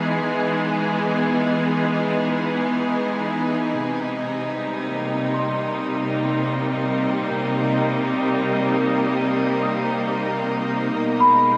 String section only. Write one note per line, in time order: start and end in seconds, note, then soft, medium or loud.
0.00 3.82 E3 medium
0.00 3.82 G#3 medium
0.00 3.81 B3 medium
0.00 11.57 D#4 medium
0.00 3.82 G#4 medium
3.82 11.02 C3 medium
4.47 11.01 G3 medium
4.80 11.57 A#3 medium
11.01 11.57 B2 medium
11.26 11.57 G#3 medium